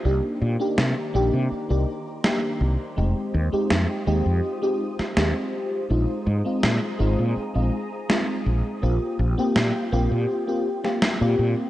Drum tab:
SD |----o-------o---|----o------oo---|----o-------o---|----o------oo---|